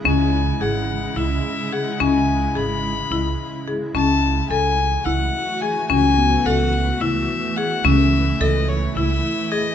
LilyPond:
<<
  \new Staff \with { instrumentName = "Violin" } { \time 7/8 \key fis \dorian \tempo 4 = 108 gis''4 fis''4 e''4 fis''8 | gis''4 b''2 r8 | a''4 gis''4 fis''4 gis''8 | gis''4 fis''4 e''4 fis''8 |
e''4 dis''8 cis''8 e''4 dis''8 | }
  \new Staff \with { instrumentName = "Marimba" } { \time 7/8 \key fis \dorian cis'4 gis'4 e'4 gis'8 | cis'4 gis'4 e'4 gis'8 | cis'4 a'4 e'4 gis'8 | cis'4 a'4 e'4 gis'8 |
cis'4 a'4 e'4 gis'8 | }
  \new Staff \with { instrumentName = "Handpan" } { \time 7/8 \key fis \dorian cis'2. r8 | r2. r8 | r2 e'4.~ | e'8 b2. |
r2. r8 | }
  \new Staff \with { instrumentName = "Ambient pad" } { \time 7/8 \key fis \dorian << { e'2.~ e'8~ | e'2.~ e'8 | fis'2.~ fis'8~ | fis'4.~ fis'16 e'4.~ e'16~ |
e'2.~ e'8 | } \\ { <cis gis>2.~ <cis gis>8~ | <cis gis>2.~ <cis gis>8 | <e a>2.~ <e a>8~ | <e a>2.~ <e a>8~ |
<e a>2.~ <e a>8 | } >> }
  \new Staff \with { instrumentName = "Upright bass" } { \clef bass \time 7/8 \key fis \dorian cis,4 gis,,4 cis,8 r4 | cis,4 gis,,4 cis,8 r4 | cis,4 cis,4 cis,8 r4 | cis,4 cis,4 cis,8 r4 |
cis,4 cis,4 cis,8 r4 | }
>>